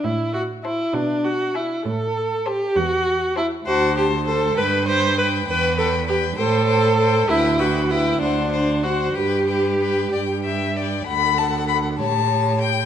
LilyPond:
<<
  \new Staff \with { instrumentName = "Violin" } { \time 6/8 \key g \major \tempo 4. = 66 r4 a''8 r4 gis''8 | r4 a''8 r4 a''8 | a''8 a''8 a''8 g''8 g''8 g''8 | g''8 g''8 g''8 g''8 g''8 g''8 |
g''8 g''8 g''8 fis''8 fis''8 fis''8 | g''8 g''8 g''8 g''8 g''8 g''8 | \key d \major b''8 a''8 b''8 a''4 g''8 | }
  \new Staff \with { instrumentName = "Violin" } { \time 6/8 \key g \major r4 c''8 r4 e''8 | r4 c''8 r4 c''8 | c''8 c''8 c''8 b'8 b'8 b'8 | b'8 b'8 b'8 c''8 c''8 c''8 |
b'8 b'8 b'8 c''8 c''8 c''8 | b'8 b'8 b'8 d''8 e''8 d''8 | \key d \major fis''4. cis''4. | }
  \new Staff \with { instrumentName = "Viola" } { \time 6/8 \key g \major e'8 fis'8 e'8 d'8 fis'8 e'8 | a'4 g'8 fis'4 e'8 | fis'8 g'8 a'8 b'8 c''8 b'8 | b'8 a'8 g'8 a'4. |
e'8 fis'8 e'8 d'4 fis'8 | g'2~ g'8 r8 | \key d \major a'4. g'4. | }
  \new Staff \with { instrumentName = "Cello" } { \clef bass \time 6/8 \key g \major a,4. b,4. | a,4. e,4. | d,4. g,4. | e,4. a,4. |
d,4. d,4. | g,4. g,4. | \key d \major d,4. a,4. | }
>>